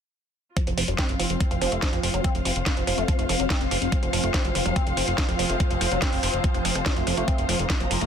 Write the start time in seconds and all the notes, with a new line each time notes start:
0.57 F3 C4 F4, kick, closed hi-hat
0.67 F1 F3, closed hi-hat
0.78 F1 F3, open hi-hat
0.86 F1 F#3 C5, closed hi-hat
0.98 C4 F5, kick, snare, closed hi-hat
1.09 F#1, closed hi-hat
1.19 F1 F3, open hi-hat
1.30 F1, closed hi-hat
1.40 kick, closed hi-hat
1.51 F1 F3, closed hi-hat
1.61 F1 F3, open hi-hat
1.72 F1 A3, closed hi-hat
1.82 F3, kick, snare, closed hi-hat
1.93 F1 F3, closed hi-hat
2.03 F1 F3, open hi-hat
2.14 F1 F#3, closed hi-hat
2.24 C4, kick, closed hi-hat
2.35 F1, closed hi-hat
2.45 F1 F3, open hi-hat
2.56 F1, closed hi-hat
2.66 kick, snare, closed hi-hat
2.77 F1 F3, closed hi-hat
2.87 F1 F3, open hi-hat
2.98 F1 A3, closed hi-hat
3.08 F3, kick, closed hi-hat
3.19 F1 F3, closed hi-hat
3.29 F1 F3, open hi-hat
3.40 F1 F#3, closed hi-hat
3.50 C4, kick, snare, closed hi-hat
3.61 F1, closed hi-hat
3.71 F1 F3, open hi-hat
3.82 F1, closed hi-hat
3.92 kick, closed hi-hat
4.03 F1 F3, closed hi-hat
4.13 F1 F3, open hi-hat
4.24 F1 A3, closed hi-hat
4.34 F3, kick, snare, closed hi-hat
4.45 F#1 F3, closed hi-hat
4.55 F1 F3, open hi-hat
4.66 F1 F#3, closed hi-hat
4.76 C4, kick, closed hi-hat
4.87 F1, closed hi-hat
4.97 F1 F3, open hi-hat
5.08 F1, closed hi-hat
5.18 kick, snare, closed hi-hat
5.29 F1 F3, closed hi-hat
5.39 F1 F3, open hi-hat
5.50 F1 A3, closed hi-hat
5.60 F3, kick, closed hi-hat
5.71 F1 F3, closed hi-hat
5.81 F1 F3, open hi-hat
5.92 F1 F#3, closed hi-hat
6.02 C4, kick, snare, closed hi-hat
6.13 F1, open hi-hat
6.23 F1 F3, open hi-hat
6.33 F1, closed hi-hat
6.44 kick, closed hi-hat
6.54 F1 F3, closed hi-hat
6.65 F1 F3, open hi-hat
6.75 F1 F3, closed hi-hat
6.86 F#3, kick, snare, closed hi-hat
6.96 F1 A3, closed hi-hat
7.07 F1 F3, open hi-hat
7.17 F1 A3, closed hi-hat
7.28 A#3 C4, kick, closed hi-hat
7.38 F1, closed hi-hat
7.49 F1 F3, open hi-hat
7.59 F1, closed hi-hat
7.70 A#5, kick, snare, closed hi-hat
7.80 F#1 F3, closed hi-hat
7.91 F1 F3, open hi-hat
8.01 F1 A3, closed hi-hat